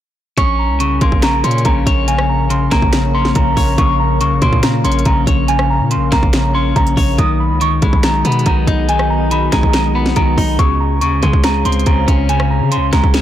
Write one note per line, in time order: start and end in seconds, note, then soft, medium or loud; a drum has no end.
0.38 0.71 A#1 loud
0.38 7.15 A#3 medium
0.38 1.43 C#4 medium
0.38 7.14 A#4 medium
0.38 7.14 C#5 medium
0.38 7.14 F5 medium
0.38 0.54 C#6 loud
0.38 kick loud
0.38 closed hi-hat medium
0.59 0.75 A#5 medium
0.69 1.00 C2 loud
0.80 1.21 C#3 medium
0.80 0.97 C#6 medium
0.80 closed hi-hat medium
1.01 1.42 A#1 loud
1.01 2.08 A#3 medium
1.01 1.18 C6 medium
1.01 kick medium
1.01 closed hi-hat medium
1.12 kick medium
1.22 1.64 C#3 medium
1.22 1.39 A#5 medium
1.22 finger snap loud
1.22 snare loud
1.22 closed hi-hat medium
1.44 1.64 A#2 loud
1.44 2.50 C#4 medium
1.44 1.60 C6 medium
1.44 closed hi-hat medium
1.51 closed hi-hat medium
1.58 closed hi-hat soft
1.65 1.86 A#1 loud
1.65 2.06 C#3 medium
1.65 1.82 A#5 medium
1.65 kick loud
1.65 closed hi-hat medium
1.87 2.68 A#1 loud
1.87 2.93 C#5 medium
1.87 kick medium
1.87 closed hi-hat medium
2.08 2.49 C#3 medium
2.08 2.24 G#5 medium
2.08 closed hi-hat medium
2.19 cross-stick loud
2.29 2.45 A#5 medium
2.50 2.92 C#3 medium
2.50 2.67 C6 medium
2.50 closed hi-hat medium
2.71 3.33 A#1 loud
2.71 3.78 A#3 medium
2.71 3.12 A#5 medium
2.71 finger snap medium
2.71 kick loud
2.71 snare medium
2.71 closed hi-hat medium
2.82 kick medium
2.93 3.34 C#3 medium
2.93 finger snap loud
2.93 snare loud
2.93 closed hi-hat medium
3.14 4.21 C#4 medium
3.14 3.31 C6 medium
3.25 snare medium
3.35 3.56 A#1 loud
3.35 3.77 C#3 medium
3.35 3.76 A#5 medium
3.35 kick loud
3.35 closed hi-hat medium
3.57 3.77 A#1 loud
3.57 4.63 C#5 loud
3.57 kick medium
3.57 open hi-hat medium
3.78 4.22 A#1 loud
3.78 4.20 C#3 loud
3.78 3.95 C#6 loud
3.78 kick loud
3.78 closed hi-hat medium
4.00 4.16 A#5 medium
4.21 4.33 C2 loud
4.21 4.62 C#3 medium
4.21 4.37 C#6 medium
4.21 closed hi-hat medium
4.31 4.41 A#1 loud
4.42 4.83 A#2 loud
4.42 5.49 A#3 medium
4.42 4.58 C6 loud
4.42 kick medium
4.42 closed hi-hat medium
4.53 kick medium
4.63 5.05 C#3 medium
4.63 4.80 A#5 medium
4.63 finger snap loud
4.63 snare loud
4.63 closed hi-hat medium
4.84 5.05 A#1 loud
4.84 5.91 C#4 medium
4.84 5.01 C6 medium
4.84 closed hi-hat medium
4.92 closed hi-hat medium
4.99 closed hi-hat soft
5.05 5.26 A#1 loud
5.05 5.47 C#3 medium
5.05 5.22 A#5 medium
5.05 kick loud
5.05 closed hi-hat medium
5.27 5.82 A#1 loud
5.27 6.33 C#5 medium
5.27 kick medium
5.27 closed hi-hat medium
5.48 5.90 C#3 loud
5.48 5.65 G#5 medium
5.48 closed hi-hat medium
5.59 cross-stick loud
5.70 5.86 A#5 medium
5.80 5.98 A#2 loud
5.91 6.32 C#3 medium
5.91 6.07 C6 medium
5.91 closed hi-hat medium
5.96 6.11 A#1 loud
6.12 6.73 A#1 loud
6.12 7.18 A#3 medium
6.12 6.52 A#5 medium
6.12 finger snap medium
6.12 kick loud
6.12 snare medium
6.12 closed hi-hat medium
6.23 kick medium
6.33 6.75 C#3 medium
6.33 finger snap loud
6.33 snare loud
6.33 closed hi-hat medium
6.55 7.18 C#4 medium
6.55 6.71 C6 medium
6.76 6.96 A#1 loud
6.76 7.19 C#3 medium
6.76 7.16 A#5 medium
6.76 kick loud
6.76 closed hi-hat medium
6.87 closed hi-hat medium
6.97 7.18 A#1 loud
6.97 7.18 C#5 medium
6.97 kick medium
6.97 open hi-hat medium
7.18 7.52 B1 loud
7.18 10.56 B3 medium
7.18 10.56 F#4 medium
7.18 10.56 G#4 medium
7.18 10.56 D#5 medium
7.18 7.35 D#6 loud
7.18 kick loud
7.18 closed hi-hat medium
7.40 7.56 B5 medium
7.50 7.81 C#2 loud
7.61 8.03 D#3 medium
7.61 7.78 C#6 loud
7.61 closed hi-hat medium
7.82 8.23 B1 loud
7.82 8.89 G#3 medium
7.82 7.99 B5 medium
7.82 kick loud
7.82 closed hi-hat medium
7.93 kick medium
8.03 8.45 D#3 medium
8.03 8.20 A#5 medium
8.03 finger snap loud
8.03 snare loud
8.03 closed hi-hat medium
8.25 8.45 B2 loud
8.25 9.31 B3 medium
8.25 8.41 B5 medium
8.25 closed hi-hat medium
8.32 closed hi-hat medium
8.39 closed hi-hat soft
8.46 8.67 B1 loud
8.46 8.88 D#3 medium
8.46 8.63 A#5 medium
8.46 kick loud
8.46 closed hi-hat medium
8.67 9.49 B1 loud
8.67 9.74 D#4 medium
8.67 kick medium
8.67 closed hi-hat medium
8.89 9.30 D#3 medium
8.89 9.05 G#5 medium
8.89 closed hi-hat medium
8.99 cross-stick loud
9.10 9.26 A#5 medium
9.31 9.73 D#3 medium
9.31 9.48 B5 medium
9.31 closed hi-hat medium
9.52 10.14 B1 loud
9.52 10.59 G#3 medium
9.52 9.93 A#5 medium
9.52 finger snap medium
9.52 kick loud
9.52 snare medium
9.52 closed hi-hat medium
9.63 kick medium
9.73 10.15 D#3 medium
9.73 finger snap loud
9.73 snare loud
9.73 closed hi-hat medium
9.95 10.59 B3 medium
9.95 10.12 B5 medium
10.06 snare medium
10.16 10.37 B1 loud
10.16 10.59 D#3 medium
10.16 10.56 A#5 medium
10.16 kick loud
10.16 closed hi-hat medium
10.38 10.58 B1 loud
10.38 10.59 D#4 medium
10.38 kick medium
10.38 open hi-hat medium
10.59 11.03 C#2 loud
10.59 13.21 C#3 medium
10.59 11.01 C#3 loud
10.59 13.21 G#4 medium
10.59 13.21 C5 medium
10.59 13.21 F5 medium
10.59 10.75 C#6 loud
10.59 kick loud
10.59 closed hi-hat medium
10.80 10.97 A#5 medium
11.01 11.14 D#2 loud
11.01 11.43 C#3 medium
11.01 11.18 C#6 medium
11.01 closed hi-hat medium
11.12 11.22 C#2 loud
11.23 11.33 C#3 loud
11.23 12.29 G#3 medium
11.23 11.39 C6 medium
11.23 kick loud
11.23 closed hi-hat medium
11.33 11.64 C#2 loud
11.33 kick medium
11.44 11.86 C#3 medium
11.44 11.61 A#5 medium
11.44 finger snap loud
11.44 snare loud
11.44 closed hi-hat medium
11.65 11.86 C#2 loud
11.65 12.72 C4 medium
11.65 11.82 C6 medium
11.65 closed hi-hat medium
11.72 closed hi-hat medium
11.79 closed hi-hat soft
11.86 12.07 C#2 loud
11.86 12.28 C#3 medium
11.86 12.03 A#5 medium
11.86 kick loud
11.86 closed hi-hat medium
12.08 12.62 C#2 loud
12.08 13.14 C#4 medium
12.08 kick medium
12.08 closed hi-hat medium
12.29 12.70 C#3 medium
12.29 12.45 G#5 medium
12.29 closed hi-hat medium
12.40 cross-stick loud
12.50 12.67 A#5 medium
12.61 12.78 C#3 loud
12.72 13.13 C#3 medium
12.72 12.88 C6 medium
12.72 closed hi-hat medium
12.77 12.92 C#2 loud
12.93 13.03 C#2 loud
12.93 13.21 G#3 medium
12.93 13.21 A#5 medium
12.93 finger snap medium
12.93 kick loud
12.93 snare medium
12.93 closed hi-hat medium
13.04 13.21 C#2 loud
13.04 kick medium
13.14 13.21 C#3 medium
13.14 finger snap loud
13.14 snare loud
13.14 closed hi-hat medium